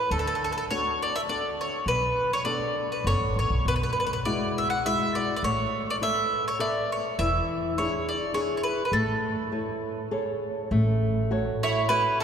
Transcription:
Already playing: B4
0.11 D2 D3 A4
0.19 A4
0.27 A4
0.35 A4
0.44 A4
0.52 A4
0.58 A4
0.71 D4 F#4 A4 C#5
1.02 D5
1.16 E5
1.29 D4 F#4 A4 D5
1.61 C#5
1.86 B1 B2 B4
2.33 C#5
2.45 B3 D4 A4 D5
2.92 B4
3.04 F#1 B3 D4 A4 C#5
3.21 G#1
3.36 A1 C#5
3.50 B1
3.65 B1 B2 B4
3.76 B4
3.83 B4
3.93 B4
4.00 B4
4.07 B4
4.13 B4
4.25 G#3 E4 F#4 D5
4.58 E5
4.70 F#5
4.85 G#3 E4 F#4 E5
5.15 D5
5.36 D5
5.43 A1 A3 C#5
5.90 D5
6.01 A4 B4 C#5 E5
6.48 C#5
6.59 A4 B4 D5 E5
6.92 C#5
7.19 E1 E3 E5
7.78 D4 E4 G#4 C#5
8.09 D5
8.34 D4 E4 G#4 C#5
8.57 C#5
8.63 B4
8.85 B4
8.92 A1 A3 A4
9.52 E4 A4 C#5
10.11 G#4 A4 C#5
10.71 A1 A3
11.31 F#4 A4 C#5
11.63 E4 C#5
11.89 E4 F#4 A4 B4 C#5
12.20 A4

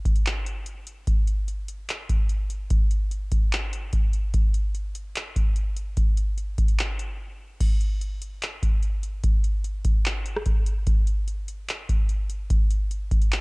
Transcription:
0.05 kick, closed hi-hat
0.16 closed hi-hat
0.26 clap, closed hi-hat
0.46 closed hi-hat
0.66 closed hi-hat
0.87 closed hi-hat
1.07 kick, closed hi-hat
1.27 closed hi-hat
1.48 closed hi-hat
1.68 closed hi-hat
1.89 clap, closed hi-hat
2.09 kick, closed hi-hat
2.29 closed hi-hat
2.50 closed hi-hat
2.70 kick, closed hi-hat
2.91 closed hi-hat
3.11 closed hi-hat
3.32 kick, closed hi-hat
3.52 clap, closed hi-hat
3.73 closed hi-hat
3.93 kick, closed hi-hat
4.13 closed hi-hat
4.34 kick, closed hi-hat
4.54 closed hi-hat
4.75 closed hi-hat
4.95 closed hi-hat
5.15 clap, closed hi-hat
5.36 kick, closed hi-hat
5.56 closed hi-hat
5.76 closed hi-hat
5.97 kick, closed hi-hat
6.17 closed hi-hat
6.38 closed hi-hat
6.58 kick, closed hi-hat
6.68 closed hi-hat
6.79 clap, closed hi-hat
6.99 closed hi-hat
7.60 kick, closed hi-hat, crash
7.81 closed hi-hat
8.01 closed hi-hat
8.22 closed hi-hat
8.42 clap, closed hi-hat
8.63 kick, closed hi-hat
8.83 closed hi-hat
9.03 closed hi-hat
9.24 kick, closed hi-hat
9.44 closed hi-hat
9.64 closed hi-hat
9.85 kick, closed hi-hat
10.05 clap, closed hi-hat
10.26 closed hi-hat
10.36 cross-stick
10.46 kick, closed hi-hat
10.66 closed hi-hat
10.87 kick, closed hi-hat
11.07 closed hi-hat
11.28 closed hi-hat
11.48 closed hi-hat
11.69 clap, closed hi-hat
11.89 kick, closed hi-hat
12.09 closed hi-hat
12.30 closed hi-hat
12.50 kick, closed hi-hat
12.71 closed hi-hat
12.91 closed hi-hat
13.11 kick, closed hi-hat
13.22 closed hi-hat
13.32 clap, closed hi-hat

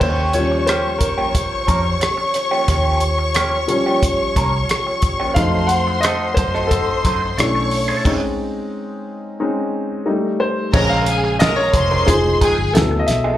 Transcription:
0.00 D#2 F3 A#3 C#4 G4 C5 C#5 C#6, kick, crash
0.33 F3 G3 C#4 C#5, closed hi-hat
0.52 muted clean electric guitar stroke
0.59 C#5
0.67 F3 A#3 C#4 G4 C5, cross-stick, closed hi-hat
0.98 F2 A#4, muted clean electric guitar stroke, kick, closed hi-hat
1.18 F3 A#3 C#4 G4
1.34 muted clean electric guitar stroke, kick, closed hi-hat
1.67 F2 F3 A#3 C#4 A#4, kick, closed hi-hat
1.84 muted clean electric guitar stroke
2.01 muted clean electric guitar stroke, cross-stick, closed hi-hat
2.17 muted clean electric guitar stroke
2.34 cross-stick, closed hi-hat
2.51 F3 A#3 C#4 G4
2.68 D#2 F3 A#3 C#4 G4, kick, closed hi-hat
3.00 closed hi-hat
3.18 muted clean electric guitar stroke
3.34 F3 A#3 C#4 G4, cross-stick, closed hi-hat
3.68 A#1 F3 G3 C#4, muted clean electric guitar stroke, closed hi-hat
3.86 F3 A#3 C#4 G4
4.03 muted clean electric guitar stroke, kick, closed hi-hat
4.36 C2 F3 A#3 C#4 A#4, kick, closed hi-hat
4.53 muted clean electric guitar stroke
4.69 muted clean electric guitar stroke, cross-stick, closed hi-hat
4.87 muted clean electric guitar stroke
5.02 kick, closed hi-hat
5.20 F3 A#3 C#4 G4
5.34 F2 F#3 A3 C4 D#4 A4 C5 F5 C6, kick, closed hi-hat
5.67 F#5, closed hi-hat
5.87 muted clean electric guitar stroke
6.01 F#3 C4 D#5, closed hi-hat
6.05 D#4 A4, cross-stick
6.34 F#2 C5 C6, muted clean electric guitar stroke, kick, closed hi-hat
6.54 F#3 C4 D#4 A4, cross-stick
6.67 A4, kick
6.71 muted clean electric guitar stroke, closed hi-hat
7.05 F#2 F#3 C4 D#4 C5, kick, closed hi-hat
7.22 muted clean electric guitar stroke
7.37 B1 A3 C#4 D4 E4 C#5 C#6, muted clean electric guitar stroke, cross-stick, closed hi-hat
7.55 muted clean electric guitar stroke
7.71 open hi-hat
7.88 D4 E4 A4 C#5
8.04 G#3 C4 C#4 D#4, kick, crash
9.40 G#3 C4 C#4 D#4
10.06 G3 A3 D#4
10.40 C5
10.73 A#1 C#3 G#3 C#4 F4 A#4 C5 C#5 A#5, kick, crash
10.89 F5
11.06 G#4 G#5, closed hi-hat
11.24 muted clean electric guitar stroke
11.39 G#3 C#4 F4 A#4 D#5 A#5, snare, closed hi-hat
11.56 C#5
11.73 F1 C5 C6, muted clean electric guitar stroke, kick, closed hi-hat
11.91 G#3 C#4 F4 A#4
12.06 F1 F3 G#3 D#4 G#4, muted clean electric guitar stroke, kick, closed hi-hat
12.41 D#3 G#3 C4 G#4 G#5, muted fingered electric bass stroke, kick, closed hi-hat
12.57 G1, muted clean electric guitar stroke
12.73 D2 F#3 B3 E4 A4, muted clean electric guitar stroke, snare, closed hi-hat
12.91 muted clean electric guitar stroke
12.99 D#5
13.06 B1 E5, snare, closed hi-hat
13.24 F#3 B3 E4 A4

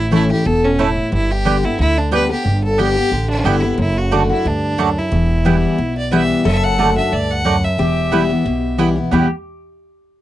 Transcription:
Already playing: A1 A2 E4
0.11 E3 A3 C#4 E4 C#5 A5
0.30 C#4 E4 G4
0.45 E1 B2 A4
0.65 C#4
0.79 A2 A3 E4 C#5 A5
1.12 G1 G2 E4
1.31 G4
1.45 D3 G3 B3 G4 D5 G5
1.63 B3 E4 G4
1.79 D2 D3 E4
1.98 D4
2.11 D3 G3 B3 G4 B4 D5 G5
2.29 B3 G4
2.45 G1 G2
2.64 A4
2.78 D3 G3 B3 G4 D5 G5
2.97 B3 G4
3.12 A1 D3
3.30 D4
3.44 G1 D3 G3 B3 E4 G4 D5 G5
3.62 B3 G4
3.78 F#1 F#2 E4
3.98 F#4
4.11 D3 A3 D4 F#4 D5 A5
4.29 D4 E4 F#4
4.45 D2 G2 D4
4.78 F#2 A3 F#4 D5 A5
4.98 E4
5.12 E1 E2
5.45 E3 G3 B3 E4 B4 G5
5.78 B1 B2
5.98 D5
6.12 E3 G3 B3 E4 B4 E5 G5
6.45 F#1 F#2 A4 E5
6.64 F#5
6.78 D3 A3 D4 F#4 D5 A5
6.96 D4 F#4 E5
7.12 D2 G2 D5
7.31 F#5
7.45 F#2 A3 F#4 D5 A5
7.64 E5
7.78 E1 E2 G4
8.11 E3 G3 B3 E4 B4 G5
8.29 B3 E4
8.45 B1 B2
8.78 E3 G3 B3 E4 B4 G5
8.96 B3 E4
9.11 E2 B2 E3 G3 B3 E4 G4 B4 G5

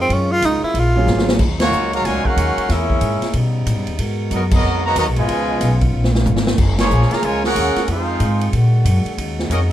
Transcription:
Already playing: C#3 D#3 G#3 F4
0.01 C4
0.09 F#2 C#4, kick, ride
0.32 F4
0.42 C#2 D#4, kick, hi-hat pedal, ride
0.63 E4, muted upright bass stroke
0.74 A#1, kick, ride
0.79 F4
0.96 F#3 A#3 C#4 F4 G#4
1.07 G#1, snare, hi-hat pedal
1.18 snare
1.28 snare
1.39 D#2 C#3 F#3 G#3 D#4, kick, crash
1.60 F#3 A#3 C#4 F4 F#4 C#5, snare, ride
1.72 C#2, hi-hat pedal
1.93 C#3 F#3 A#3 F#4 C#5 F5 A#5, ride
2.04 C#2 A#2 C#3 G#3 F#4 C#5 F5 G#5, kick, snare, ride
2.25 A#3 C#4 F#4 A#4 F5 F#5, muted upright bass stroke, kick
2.36 D#2, kick, hi-hat pedal, ride
2.57 muted upright bass stroke, ride
2.69 E2 G#3 A#3 C#4 E4 G#4 A#4 E5, kick, snare, ride
2.90 kick
3.01 G#2, kick, hi-hat pedal, ride
3.22 muted upright bass stroke, snare, ride
3.33 B2 G3 B3 D#4, kick, ride
3.66 A2, kick, hi-hat pedal, ride
3.76 G2
3.87 D#2, ride
3.99 G#2 B2 G#3 F#4 A#4, kick, ride
4.31 F#2 F#3 B3 D#4 F#4 A#4 D#5, kick, hi-hat pedal, ride
4.51 F#3 B3 D#4 F#4 A#4 D#5, kick, crash
4.63 F2
4.84 D#3 F#3 A#3 F#4 B4 D#5 A#5
4.96 D#2 D#3 F#3 A#3 F#4 B4 D#5 A#5, kick, hi-hat pedal, ride
5.07 B1
5.16 G#1 B2 F3 G#3 F4 B4 D#5 G#5, ride
5.28 C#2 D#3 B3 C#4 F4, kick, ride
5.61 B1, kick, snare, hi-hat pedal, ride
5.81 kick, ride
5.93 A#1
6.04 snare
6.15 snare
6.25 G#1, hi-hat pedal, mid tom
6.36 snare
6.47 snare
6.58 F#1 C#3 G#3 A#3 G#4, kick, crash
6.78 F3 A#3 C#4 F4 G#4 C#5, snare, ride
6.90 A#1, hi-hat pedal
7.02 snare
7.10 C#3 F3 A#3 G#4 C#5 F5 A#5, muted upright bass stroke, snare, ride
7.23 C#2 C#3 F3 G#3 F4 A#4 C#5 G#5, kick, ride
7.43 A#3 C#4 F#4 G#4 A#4 F#5, snare
7.55 D#2, kick, hi-hat pedal, ride
7.76 muted upright bass stroke, snare, ride
7.88 F2 D#3 G#3 C4 D#4 F4 G#4 C5 F5, kick, ride
8.20 G#2, kick, hi-hat pedal, ride
8.41 ride
8.53 A#2 D3 A#3 F#4, kick, ride
8.85 F#2, kick, hi-hat pedal, ride
9.05 muted upright bass stroke, ride
9.17 D#2 C#3 D#4 F#4, kick, ride
9.39 snare
9.50 F2 F#3 A#3 C#4 D#4 F#4 A#4 D#5, kick, hi-hat pedal, ride

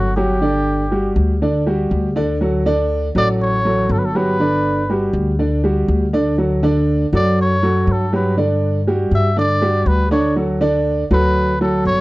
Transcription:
Already playing: G1 F#4
0.16 F#3 F#4 G4
0.41 D3 D4 D5
0.91 G3 F#4 G4
1.16 D2
1.42 D3 D4 D5
1.66 G3 F#4 G4
1.91 D2
2.16 D3 D4 D5
2.41 F#3 F#4 A4
2.66 D3 D4 D5
3.15 A1 F#3 F#4 A4 D5
3.42 C#5
3.65 F#3 F#4 A4
3.89 G1 A4
3.98 B4
4.05 A4
4.15 F#3 F#4 G4 B4
4.40 D3 D4 D5
4.89 G3 F#4 G4
5.13 D2
5.39 D3 D4 D5
5.64 G3 F#4 G4
5.88 D2
6.13 D3 D4 D5
6.38 F#3 F#4 A4
6.63 D3 D4 D5
7.13 F#2 F#3 F#4 A4 D5
7.41 C#5
7.63 F#3 F#4 A4
7.87 G2
7.92 A4
8.13 F#3 F#4 G4 B4
8.37 D3 D4 D5
8.87 G3 F#4 G4
9.11 G2 E5
9.37 D3 D4 D5
9.62 G3 F#4 G4
9.86 D2 B4
10.11 D3 D4 C#5 D5
10.36 F#3 F#4 A4
10.61 D3 D4 D5
11.11 D2 F#3 F#4 A4 B4
11.61 F#3 F#4 A4
11.85 G1 C#5

